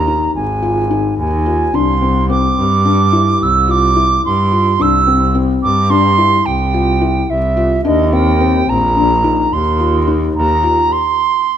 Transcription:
Already playing: D#2 A#5
0.07 D#4
0.35 G#1 G#5
0.62 F4
0.90 D#4
1.18 D#2 G#5
1.46 F4
1.74 C2 D4 C6
2.02 C4
2.30 C4 D6
2.57 G2
2.85 D4
3.13 E4
3.41 C2 E6
3.68 F4 D6
3.96 E4
4.25 G2 C6
4.52 F4
4.79 C2 D4 E6
5.07 C4
5.35 C4
5.63 G2 D6
5.90 D4 C6
6.18 E4
6.46 C2 G5
6.74 F4
7.01 E4
7.30 C2 E5
7.57 F4
7.85 D#2 D4 D#5
8.12 C4 G5
8.41 C4
8.69 A#1 A#5
8.96 D4
9.24 D#4
9.52 D#2 C6
9.80 F4
10.07 D#4
10.35 D#2 A#5
10.63 F4
10.92 C6

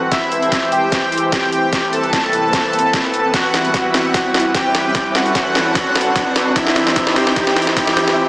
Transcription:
Already playing: E3 C4 A4 B4 A5, riser
0.12 E4 G4 C5 E5, kick, snare, closed hi-hat
0.32 C5, closed hi-hat
0.42 closed hi-hat
0.52 kick, snare, closed hi-hat
0.62 G5
0.72 G4 G5, closed hi-hat
0.92 kick, snare, closed hi-hat
1.12 closed hi-hat
1.18 closed hi-hat
1.32 G4 G5, kick, snare, closed hi-hat
1.52 closed hi-hat
1.73 C2 C4 A4 B4, kick, snare, closed hi-hat
1.84 B4
1.93 A4 A5, closed hi-hat
2.03 closed hi-hat
2.13 kick, snare, closed hi-hat
2.27 A5
2.33 closed hi-hat
2.53 kick, snare, closed hi-hat
2.73 closed hi-hat
2.79 closed hi-hat
2.93 kick, snare, closed hi-hat
3.14 closed hi-hat
3.34 G3 E4 F#4 F#5, kick, snare, closed hi-hat
3.47 G3 E5
3.54 snare, closed hi-hat
3.65 closed hi-hat
3.74 kick, snare, closed hi-hat
3.94 F#4 F#5, snare, closed hi-hat
4.14 kick, snare, closed hi-hat
4.34 snare, closed hi-hat
4.40 closed hi-hat
4.55 G4 G5, kick, snare, closed hi-hat
4.75 snare, closed hi-hat
4.95 C4 A4, kick, snare, closed hi-hat
5.15 F#4 F#5, snare, closed hi-hat
5.21 B4
5.26 closed hi-hat
5.35 kick, snare, closed hi-hat
5.41 A5
5.55 snare, closed hi-hat
5.75 kick, snare, closed hi-hat
5.96 snare, closed hi-hat
6.01 closed hi-hat
6.16 kick, snare, closed hi-hat
6.36 snare, closed hi-hat
6.56 E3 E4 G4 C5 E5, kick, snare, closed hi-hat
6.67 C5, snare
6.76 snare, closed hi-hat
6.87 snare, closed hi-hat
6.96 kick, snare, closed hi-hat
7.07 snare
7.12 G5, snare, closed hi-hat
7.16 G4 G5
7.27 snare
7.36 kick, snare, closed hi-hat
7.47 snare
7.57 snare, closed hi-hat
7.62 closed hi-hat
7.67 snare
7.77 G4 G5, kick, snare, closed hi-hat
7.87 snare
7.97 snare, closed hi-hat
8.08 snare
8.17 C2 A4 B4

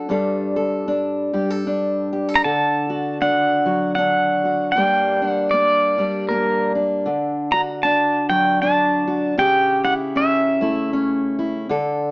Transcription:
Already playing: A4
0.09 G2 G3 D4 A4
0.56 A4
0.88 D4
1.33 G3 G4
1.50 A4
1.67 D4
2.13 G4
2.29 A4
2.35 A#5
2.44 D3 A4 A5
2.90 F#4
3.21 D4 F#5
3.66 F#3 F#4
3.95 D4 F#5
4.45 F#4
4.72 G2 G5
4.76 G3 A#3 D4
5.22 D4
5.28 F#5
5.51 A#3 D5
5.98 G3 D4
6.29 A#3 A#4
6.75 D4
7.06 D3
7.52 F#4 A#5
7.83 D4 A5
8.30 F#3 G5
8.62 D4 A5
9.08 F#4
9.38 C#3 G4 G5
9.84 E4 F#5
10.16 C#4 E5
10.61 A3 E4
10.93 C#4
11.39 E4
11.69 D3 A4

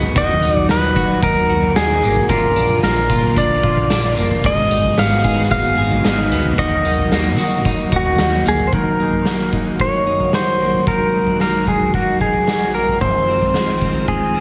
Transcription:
Already playing: D2 G#2 D#3 G#3 B3 D#4 F#4 G#4
0.03 floor tom
0.16 D#2 A#2 D#3 F#3 F#4 D#5, kick, floor tom, tambourine
0.42 D#2 D#4, tambourine
0.54 D5, floor tom
0.69 D#2 B4, snare, tambourine
0.96 D#3 F#4, kick, tambourine
1.23 D#2 D#4 A#4, kick, tambourine
1.50 D#2 F#4
1.63 floor tom
1.76 D#2 D#4 G#4, snare, tambourine
2.02 G#1 A#3, tambourine
2.16 floor tom
2.29 A#1 A#2 D3 F3 A#3 F4 A#4, kick, floor tom, tambourine
2.56 A#1 D4, tambourine
2.70 floor tom
2.83 A#1 A#3 A#4, snare, tambourine
3.10 A#2 F4, kick, tambourine
3.23 floor tom
3.36 A#1 D4 D5, kick, tambourine
3.63 A#1 F4, kick
3.77 floor tom
3.90 A#1 D4, snare, tambourine
4.17 F#1 A#3, tambourine
4.31 floor tom
4.44 G#1 G#2 D#3 G#3 B3 F#4 G#4 D#5, kick, floor tom, tambourine
4.71 G#1 D#4, tambourine
4.84 floor tom
4.97 G#1 B3 F5, snare, tambourine
5.24 G#2 G#4, kick, tambourine
5.51 G#1 D#4 F5, kick, tambourine
5.78 G#1 G#4
5.92 floor tom
6.04 G#1 D#4, snare, tambourine
6.31 D2 B3, tambourine
6.45 floor tom
6.57 D#2 D#3 F#3 A#3 F#4 D#5, kick, floor tom, tambourine
6.85 D#2 D#4, tambourine
6.98 floor tom
7.11 D#2 A#3, snare, tambourine
7.38 D#3 F#4, tambourine
7.65 D#2 D#4, kick, tambourine
7.92 D#2 F#4, kick
7.96 F#4
8.06 floor tom
8.18 D#2 D#4, snare, tambourine
8.46 D2 A#3 G#4, tambourine
8.59 floor tom
8.67 C5
8.72 D#3 F#3 A#3 F#4 A#4, kick, floor tom
9.00 D#4
9.13 floor tom
9.25 A#3, snare
9.53 D#4, kick
9.80 A#3 C#5, kick
10.07 D#4
10.20 floor tom
10.33 F#4 C5, snare
10.61 A#3
10.74 floor tom
10.87 D#3 G#3 A#4, kick, floor tom
11.14 D#4
11.27 floor tom
11.40 A#3 A#4, snare
11.67 D#4 G#4, kick
11.80 floor tom
11.94 A#3 F#4, kick
12.21 D#4 G#4, kick
12.34 floor tom
12.47 F#4, snare
12.74 A#3 A#4
12.88 floor tom
13.01 F2 C4 F4 C5, kick, floor tom
13.28 C4
13.42 floor tom
13.54 G#3, snare
13.81 C4, kick
13.95 floor tom
14.08 G#3 G#4, kick
14.35 C4

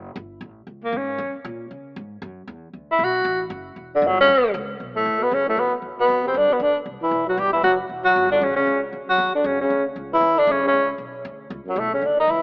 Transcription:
Already playing: F#1
0.16 G1
0.41 A1
0.67 C#2
0.84 A#3
0.93 G#2
0.97 C#4
1.18 F#2
1.34 muted upright bass stroke
1.45 A#2
1.71 C#3
1.96 G#2
2.22 F#2
2.47 E2
2.73 D2
2.91 E4
2.99 B1
3.04 F#4
3.25 A1
3.50 F#1
3.76 E1
3.95 D3
4.02 G1
4.07 F#3
4.21 C#4
4.28 A1
4.54 C#2
4.80 B1
4.95 A2 A3
5.05 D2
5.20 B2 B3, muted upright bass stroke
5.31 F#2 C#3 C#4
5.47 A2 A3
5.57 E2 B2 B3
5.72 muted upright bass stroke
5.82 D2
5.98 B2 B3
6.08 F2
6.23 C3 C4
6.34 G2 D3 D4
6.50 B2 B3, muted upright bass stroke
6.60 D2 D3 D4
6.86 C2
7.00 E3 E4, muted upright bass stroke
7.11 B1
7.27 F#3 F#4
7.38 G1 G3 G4
7.53 E3 E4
7.63 F#1 F#3 F#4
7.89 E1
8.05 F#3 F#4
8.16 G1
8.30 D3 D4
8.41 A1 C#3 C#4
8.56 C#3 C#4
8.66 C#2
8.93 D2
9.08 F#3 F#4
9.18 E2
9.34 D3 D4
9.44 F#2 C#3 C#4
9.60 C#3 C#4
9.70 D2
9.96 C#2
10.13 E3 E4
10.21 E2
10.38 D3 D4
10.47 F#2 C#3 C#4
10.63 C#3 C#4
10.73 C#2
10.98 B1
11.25 D2
11.50 C#2
11.65 F#2 F#3, muted upright bass stroke
11.76 B1 A2 A3
11.92 C#3 C#4
12.02 D#2 D3
12.06 D4
12.17 D#3 D#4
12.27 C#2 E3 E4

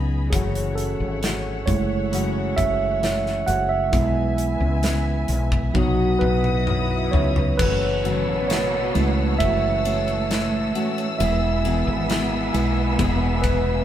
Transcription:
Already playing: C#2 F#3 G#3 B3 D#4 G#4 D#5 G#5 B5
0.30 F#1 F#2 C#3 E3 A3 C#4 F#4 G#4 C#5 E5 F#5, kick, closed hi-hat
0.55 closed hi-hat
0.75 A4, closed hi-hat
1.00 G#1
1.21 E3 A3 C#4 F#4, snare, closed hi-hat
1.66 F#1 G#3 A3 E4 C#5, kick, closed hi-hat
2.11 F#2 C#3 E3 A3 C#4 F#4, closed hi-hat
2.56 F#1 E5, kick, closed hi-hat
3.01 E3 A3 C#4 F#4, snare, closed hi-hat
3.26 snare
3.46 F#1 E3 A3 C#4 F#4 F#5, closed hi-hat
3.69 E5
3.91 B1 B2 E3 G#3 B3 E4 G#4 B4 E5 G#5, kick, closed hi-hat
4.38 closed hi-hat
4.60 C#2
4.82 E3 B3 E4 G#4, snare, closed hi-hat
5.28 B1, closed hi-hat
5.52 kick
5.73 B1 B2 F#3 B3 D#4 F#4 B4 D#5 F#5 D#6, kick, high tom
6.19 B1 B4, mid tom
6.44 mid tom
6.66 F#3 B3 D#4 F#4, mid tom
7.11 C#2 D#4 F#4 C#5, floor tom
7.16 B3
7.36 floor tom
7.58 F#1 F#2 B2 C#3 E3 A3 B3 C#4 F#4 B4 C#5 F#5 A5 E6, kick, crash
8.04 F#2 C#3 E3 A3 C#4 F#4, ride
8.28 A1
8.48 F#2 C#3 E3 A3 C#4 F#4 C#5, snare, ride
8.94 C#2 E3 G#3 A3 C#4 E4 F#4, ride
9.39 F#1 E3 A3 C#4 E5, kick, ride
9.43 F#4
9.85 A2 E3 A3 C#4 F#4, ride
10.08 ride
10.31 snare, ride
10.74 E3 A3 C#4 F#4, ride
10.98 ride
11.18 E1 B2 E3 G#3 B3 E4 G#4 B4 E5 G#5, ride
11.64 E3 B3 E4 G#4, ride
11.87 G#1
12.09 E3 B3 E4 G#4, snare, ride
12.53 B1 G#3 B3 E4 G#4, ride
12.98 E1 E3 B3 E4 G#4, kick, ride
13.42 E4 G#4 B4, kick, ride
13.46 B3

